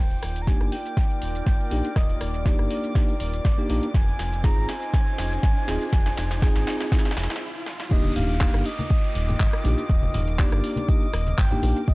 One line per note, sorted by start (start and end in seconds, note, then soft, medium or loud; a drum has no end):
0.00 0.17 D#1 loud
0.00 3.90 A#3 medium
0.00 5.21 D#4 medium
0.00 1.57 F4 medium
0.00 7.38 F4 medium
0.00 3.90 A#4 medium
0.00 3.90 D5 medium
0.00 0.43 G5 loud
0.00 7.41 D6 medium
0.00 riser medium
0.11 closed hi-hat soft
0.11 shaker soft
0.23 0.56 D#1 medium
0.23 cross-stick medium
0.23 open hi-hat loud
0.36 closed hi-hat medium
0.36 shaker medium
0.42 0.49 A#5 medium
0.47 0.73 A#3 medium
0.47 0.73 D4 medium
0.47 0.74 D#4 medium
0.47 0.74 G4 medium
0.47 0.71 G#5 loud
0.47 kick loud
0.47 snare soft
0.47 closed hi-hat medium
0.47 shaker medium
0.58 0.70 G1 loud
0.58 3.94 G5 medium
0.58 cross-stick medium
0.58 shaker soft
0.72 0.95 G5 loud
0.72 open hi-hat medium
0.85 closed hi-hat medium
0.85 shaker medium
0.97 1.97 G5 loud
0.97 kick loud
0.97 snare medium
0.97 closed hi-hat medium
0.97 shaker medium
1.10 closed hi-hat soft
1.10 shaker soft
1.22 1.41 D#1 medium
1.22 open hi-hat loud
1.35 closed hi-hat medium
1.35 shaker medium
1.46 1.57 G1 medium
1.46 kick loud
1.46 snare medium
1.46 closed hi-hat medium
1.46 shaker medium
1.60 shaker soft
1.71 1.82 A#1 loud
1.71 1.88 A#3 medium
1.71 1.88 D4 medium
1.71 1.88 D#4 medium
1.71 1.88 G4 medium
1.71 open hi-hat medium
1.85 closed hi-hat medium
1.85 shaker medium
1.96 2.16 D#1 loud
1.96 2.20 D#5 loud
1.96 kick loud
1.96 cross-stick medium
1.96 snare medium
1.96 closed hi-hat medium
1.96 shaker medium
2.09 closed hi-hat soft
2.09 shaker soft
2.21 2.54 D#1 medium
2.21 3.16 D5 loud
2.21 cross-stick medium
2.21 open hi-hat loud
2.34 closed hi-hat medium
2.34 shaker medium
2.45 2.92 A#3 medium
2.45 2.92 D4 medium
2.45 2.93 D#4 medium
2.45 2.93 G4 medium
2.45 kick loud
2.45 snare medium
2.45 closed hi-hat medium
2.45 shaker medium
2.59 2.68 G1 loud
2.59 cross-stick medium
2.59 shaker soft
2.70 open hi-hat medium
2.84 closed hi-hat medium
2.84 shaker medium
2.95 3.12 A#3 medium
2.95 3.12 D4 medium
2.95 3.12 D#4 medium
2.95 3.12 G4 medium
2.95 kick loud
2.95 snare medium
2.95 closed hi-hat medium
2.95 shaker medium
3.09 closed hi-hat soft
3.09 shaker soft
3.20 3.40 D#1 medium
3.20 3.90 D5 loud
3.20 open hi-hat loud
3.33 closed hi-hat medium
3.33 shaker medium
3.45 3.55 G1 medium
3.45 kick loud
3.45 snare medium
3.45 closed hi-hat medium
3.45 shaker medium
3.58 3.67 A#3 medium
3.58 3.67 D4 medium
3.58 3.67 D#4 medium
3.58 3.67 G4 loud
3.58 shaker soft
3.69 3.80 A#1 loud
3.69 3.86 A#3 medium
3.69 3.86 D4 medium
3.69 3.87 D#4 medium
3.69 3.87 G4 loud
3.69 open hi-hat loud
3.83 closed hi-hat medium
3.83 shaker medium
3.94 4.14 F1 loud
3.94 7.38 D#4 medium
3.94 7.42 F4 medium
3.94 7.38 G#4 medium
3.94 7.38 C5 medium
3.94 4.40 G#5 loud
3.94 kick loud
3.94 snare medium
3.94 closed hi-hat medium
3.94 shaker medium
4.01 7.42 D#5 medium
4.08 closed hi-hat soft
4.08 shaker soft
4.19 4.52 F1 medium
4.19 snare medium
4.19 open hi-hat loud
4.33 closed hi-hat medium
4.33 shaker medium
4.43 4.70 C4 medium
4.43 4.70 D#4 medium
4.43 4.70 F4 medium
4.43 4.70 G#4 medium
4.43 4.67 A#5 loud
4.43 kick loud
4.43 snare medium
4.43 closed hi-hat medium
4.43 shaker medium
4.57 4.66 G#1 loud
4.57 shaker soft
4.69 7.37 G#5 loud
4.69 snare medium
4.69 open hi-hat loud
4.82 closed hi-hat medium
4.82 shaker medium
4.94 kick loud
4.94 snare medium
4.94 closed hi-hat medium
4.94 shaker medium
5.07 closed hi-hat soft
5.07 shaker soft
5.18 5.38 F1 medium
5.18 snare medium
5.18 open hi-hat loud
5.32 closed hi-hat soft
5.32 shaker medium
5.43 5.53 G#1 medium
5.43 kick loud
5.43 snare medium
5.43 closed hi-hat medium
5.43 shaker medium
5.57 shaker soft
5.67 5.78 D#1 loud
5.67 5.85 C4 medium
5.67 5.85 D#4 medium
5.67 5.85 F4 medium
5.67 5.85 G#4 medium
5.67 snare medium
5.67 open hi-hat loud
5.81 closed hi-hat medium
5.81 shaker medium
5.93 6.12 F1 loud
5.93 kick loud
5.93 snare medium
5.93 closed hi-hat medium
5.93 shaker medium
6.06 snare medium
6.06 closed hi-hat soft
6.06 shaker soft
6.18 6.51 F1 medium
6.18 snare medium
6.18 open hi-hat loud
6.31 snare medium
6.31 closed hi-hat medium
6.31 shaker medium
6.42 6.89 C4 medium
6.42 6.89 D#4 medium
6.42 6.89 F4 medium
6.42 6.89 G#4 loud
6.42 kick loud
6.42 snare loud
6.42 closed hi-hat medium
6.42 shaker medium
6.56 6.65 G#1 loud
6.56 snare medium
6.56 closed hi-hat soft
6.56 shaker soft
6.67 snare loud
6.67 open hi-hat medium
6.80 snare medium
6.80 closed hi-hat medium
6.80 shaker medium
6.91 7.09 C4 medium
6.91 7.09 D#4 medium
6.91 7.09 F4 medium
6.91 7.09 G#4 medium
6.91 kick loud
6.91 snare loud
6.91 closed hi-hat medium
6.91 shaker medium
6.99 snare medium
7.05 snare medium
7.05 closed hi-hat soft
7.05 shaker soft
7.11 snare medium
7.17 7.27 F1 loud
7.17 snare loud
7.17 open hi-hat loud
7.23 snare medium
7.30 snare medium
7.30 closed hi-hat soft
7.30 shaker medium
7.36 snare medium
7.66 snare medium
7.80 snare medium
7.91 8.11 D#1 loud
7.91 8.36 A#3 loud
7.91 11.84 A#3 medium
7.91 8.36 D4 medium
7.91 11.94 D#4 medium
7.91 8.36 D#4 medium
7.91 11.84 F4 medium
7.91 8.36 G4 loud
7.91 11.94 A#4 medium
7.91 8.14 D#5 medium
7.91 11.94 D6 medium
7.91 11.84 D6 medium
7.91 kick loud
7.91 closed hi-hat medium
7.91 crash loud
7.91 downlifter medium
7.91 shaker medium
8.04 high conga medium
8.04 shaker soft
8.16 8.49 D#1 medium
8.16 8.67 F5 loud
8.16 open hi-hat loud
8.16 low conga medium
8.29 11.88 G5 medium
8.29 closed hi-hat medium
8.29 shaker medium
8.40 8.67 A#3 medium
8.40 8.67 D4 medium
8.40 8.67 D#4 medium
8.40 8.67 G4 medium
8.40 kick loud
8.40 clap loud
8.40 closed hi-hat medium
8.40 high conga medium
8.40 shaker medium
8.54 8.63 G1 loud
8.54 cross-stick medium
8.54 shaker soft
8.65 9.89 D#5 loud
8.65 open hi-hat medium
8.79 closed hi-hat medium
8.79 high conga loud
8.79 shaker medium
8.90 kick loud
8.90 closed hi-hat medium
8.90 shaker medium
9.04 shaker soft
9.15 9.35 D#1 medium
9.15 open hi-hat loud
9.28 closed hi-hat medium
9.28 high conga medium
9.28 low conga medium
9.28 shaker medium
9.40 9.50 G1 medium
9.40 kick loud
9.40 clap loud
9.40 closed hi-hat soft
9.40 shaker medium
9.53 cross-stick medium
9.53 shaker soft
9.64 9.75 A#1 loud
9.64 9.81 A#3 medium
9.64 9.82 D4 medium
9.64 9.82 D#4 medium
9.64 9.82 G4 medium
9.64 open hi-hat loud
9.64 high conga medium
9.78 closed hi-hat medium
9.78 shaker medium
9.89 10.09 D#1 loud
9.89 10.40 D#5 loud
9.89 kick loud
9.89 closed hi-hat medium
9.89 shaker medium
10.03 high conga loud
10.03 shaker soft
10.14 10.48 D#1 medium
10.14 open hi-hat loud
10.14 low conga medium
10.28 closed hi-hat medium
10.28 shaker medium
10.39 10.86 A#3 medium
10.39 10.86 D4 medium
10.39 10.86 D#4 medium
10.39 10.86 G4 medium
10.39 10.90 D5 medium
10.39 kick loud
10.39 clap loud
10.39 closed hi-hat medium
10.39 high conga medium
10.39 shaker medium
10.52 10.61 G1 loud
10.52 cross-stick medium
10.52 shaker soft
10.64 open hi-hat loud
10.76 closed hi-hat medium
10.76 high conga loud
10.76 shaker medium
10.88 11.05 A#3 medium
10.88 11.05 D4 medium
10.88 11.06 D#4 medium
10.88 11.06 G4 medium
10.88 11.40 D#5 loud
10.88 kick loud
10.88 closed hi-hat medium
10.88 shaker medium
11.03 shaker soft
11.13 11.33 D#1 medium
11.13 cross-stick medium
11.13 open hi-hat loud
11.27 closed hi-hat medium
11.27 high conga medium
11.27 shaker medium
11.38 11.49 G1 medium
11.38 11.76 G5 loud
11.38 kick loud
11.38 clap loud
11.38 closed hi-hat soft
11.38 shaker medium
11.51 11.60 A#3 medium
11.51 11.60 D4 medium
11.51 11.60 D#4 medium
11.51 11.61 G4 loud
11.51 low conga medium
11.51 shaker soft
11.62 11.73 A#1 loud
11.62 11.80 A#3 medium
11.62 11.80 D4 medium
11.62 11.80 D#4 medium
11.62 11.80 G4 loud
11.62 open hi-hat loud
11.62 high conga medium
11.76 closed hi-hat medium
11.76 shaker medium
11.88 11.94 F1 loud
11.88 11.94 G#3 medium
11.88 11.94 F4 medium
11.88 11.94 C5 medium
11.88 11.94 D#5 loud
11.88 kick loud
11.88 closed hi-hat medium
11.88 shaker medium